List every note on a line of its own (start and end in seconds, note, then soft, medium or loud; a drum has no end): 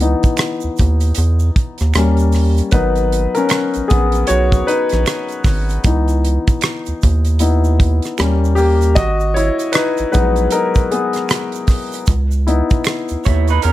0.00 0.15 C#2 medium
0.00 0.55 E3 soft
0.00 0.56 B3 soft
0.00 0.56 D#4 medium
0.00 closed hi-hat medium
0.23 kick medium
0.23 closed hi-hat soft
0.23 shaker soft
0.37 finger snap medium
0.37 cross-stick loud
0.37 closed hi-hat medium
0.37 shaker medium
0.61 0.70 D#2 soft
0.61 shaker soft
0.77 1.12 D#2 medium
0.77 kick medium
0.77 closed hi-hat medium
0.77 shaker soft
1.00 closed hi-hat soft
1.00 shaker soft
1.15 1.51 E2 medium
1.15 closed hi-hat medium
1.15 shaker medium
1.39 shaker soft
1.56 kick medium
1.56 closed hi-hat medium
1.78 1.93 D#2 medium
1.78 cross-stick soft
1.78 closed hi-hat soft
1.78 shaker soft
1.94 2.62 D#2 loud
1.94 2.69 G3 soft
1.94 2.70 A#3 soft
1.94 2.70 C#4 medium
1.94 finger snap medium
1.94 cross-stick medium
1.94 closed hi-hat medium
1.94 shaker medium
2.17 closed hi-hat soft
2.17 shaker soft
2.32 cross-stick soft
2.32 open hi-hat soft
2.32 shaker soft
2.57 closed hi-hat soft
2.57 shaker soft
2.71 3.27 G#1 loud
2.71 3.28 F#3 medium
2.71 3.29 B3 medium
2.71 3.32 D#4 medium
2.71 3.28 A#4 soft
2.71 3.37 B4 medium
2.71 kick loud
2.71 closed hi-hat medium
2.71 shaker medium
2.96 closed hi-hat soft
2.96 shaker soft
3.12 closed hi-hat medium
3.35 3.86 C#4 medium
3.35 3.85 A#4 medium
3.35 closed hi-hat soft
3.35 shaker soft
3.49 finger snap medium
3.49 cross-stick loud
3.49 closed hi-hat medium
3.49 shaker medium
3.74 3.82 A#1 soft
3.74 closed hi-hat soft
3.74 shaker soft
3.88 4.26 B3 medium
3.88 4.29 G#4 medium
3.88 kick medium
3.88 closed hi-hat medium
3.88 shaker soft
3.92 4.24 A#1 medium
4.12 closed hi-hat soft
4.12 shaker soft
4.27 4.63 B1 medium
4.27 4.65 F#4 medium
4.27 4.68 C#5 medium
4.27 closed hi-hat medium
4.27 shaker medium
4.52 kick medium
4.52 closed hi-hat soft
4.52 shaker soft
4.67 5.42 D#4 medium
4.67 5.41 B4 medium
4.67 closed hi-hat medium
4.89 5.05 A#1 medium
4.89 cross-stick soft
4.89 closed hi-hat soft
4.89 shaker soft
5.06 finger snap medium
5.06 cross-stick medium
5.06 closed hi-hat medium
5.06 shaker medium
5.29 closed hi-hat soft
5.29 shaker soft
5.44 5.79 G#1 medium
5.44 kick medium
5.44 cross-stick soft
5.44 open hi-hat soft
5.44 shaker soft
5.70 closed hi-hat soft
5.70 shaker soft
5.84 6.39 C#2 medium
5.84 6.97 E3 soft
5.84 6.98 B3 soft
5.84 6.98 D#4 medium
5.84 kick loud
5.84 closed hi-hat medium
5.84 shaker medium
6.08 closed hi-hat soft
6.08 shaker soft
6.25 closed hi-hat medium
6.47 kick medium
6.47 closed hi-hat soft
6.47 shaker soft
6.61 finger snap medium
6.61 cross-stick loud
6.61 closed hi-hat medium
6.61 shaker medium
6.86 6.94 D#2 soft
6.86 closed hi-hat soft
6.86 shaker soft
7.02 8.00 D#2 medium
7.02 kick medium
7.02 closed hi-hat medium
7.02 shaker soft
7.25 closed hi-hat soft
7.25 shaker soft
7.39 7.75 B3 soft
7.39 7.76 D#4 soft
7.39 7.75 E4 soft
7.39 closed hi-hat medium
7.39 shaker medium
7.64 shaker soft
7.80 kick medium
7.80 closed hi-hat medium
8.02 cross-stick soft
8.02 closed hi-hat soft
8.02 shaker soft
8.18 8.99 D#2 medium
8.18 8.92 G3 medium
8.18 8.57 A#3 soft
8.18 8.93 C#4 medium
8.18 finger snap medium
8.18 cross-stick medium
8.18 closed hi-hat medium
8.18 shaker medium
8.44 shaker soft
8.55 8.94 A#3 medium
8.55 8.92 G4 medium
8.55 open hi-hat soft
8.55 shaker soft
8.81 closed hi-hat soft
8.81 shaker soft
8.95 9.51 G#1 loud
8.95 9.33 F#4 medium
8.95 9.36 D#5 medium
8.95 kick loud
8.95 closed hi-hat medium
8.95 shaker medium
9.20 shaker soft
9.34 9.72 E4 medium
9.34 9.71 C#5 medium
9.34 closed hi-hat medium
9.59 closed hi-hat soft
9.59 shaker soft
9.72 10.10 D#4 medium
9.72 10.10 B4 medium
9.72 finger snap medium
9.72 cross-stick medium
9.72 closed hi-hat medium
9.72 shaker medium
9.97 10.05 A#1 soft
9.97 closed hi-hat soft
9.97 shaker soft
10.12 12.03 F#3 medium
10.12 12.04 G#3 soft
10.12 10.91 B3 medium
10.12 10.49 D#4 medium
10.12 10.52 B4 medium
10.12 kick medium
10.12 closed hi-hat medium
10.12 shaker soft
10.16 10.48 A#1 medium
10.36 closed hi-hat soft
10.36 shaker soft
10.51 10.89 D#4 medium
10.51 10.92 A#4 medium
10.51 closed hi-hat medium
10.51 shaker medium
10.75 kick medium
10.75 closed hi-hat soft
10.75 shaker soft
10.91 11.66 B3 medium
10.91 11.65 G#4 medium
10.91 closed hi-hat medium
11.13 cross-stick soft
11.13 closed hi-hat soft
11.13 shaker soft
11.29 finger snap medium
11.29 cross-stick medium
11.29 closed hi-hat medium
11.29 shaker medium
11.52 closed hi-hat soft
11.52 shaker soft
11.67 kick medium
11.67 cross-stick soft
11.67 open hi-hat soft
11.67 shaker soft
11.92 closed hi-hat soft
11.92 shaker soft
12.06 12.62 C#2 medium
12.06 kick loud
12.06 closed hi-hat medium
12.06 shaker medium
12.31 shaker soft
12.47 13.60 B3 soft
12.47 13.60 D#4 medium
12.47 13.59 E4 medium
12.47 closed hi-hat medium
12.70 kick medium
12.70 closed hi-hat soft
12.70 shaker soft
12.84 finger snap medium
12.84 cross-stick loud
12.84 closed hi-hat medium
12.84 shaker medium
13.09 13.17 D#2 soft
13.09 closed hi-hat soft
13.09 shaker soft
13.24 13.59 D#2 medium
13.24 13.48 E4 medium
13.24 13.48 C#5 medium
13.24 kick medium
13.24 closed hi-hat medium
13.24 shaker soft
13.48 13.63 D#4 medium
13.48 13.63 B4 medium
13.48 closed hi-hat soft
13.48 shaker soft
13.62 13.72 E2 medium
13.62 13.72 C#4 medium
13.62 13.72 A#4 medium
13.62 closed hi-hat medium
13.62 shaker medium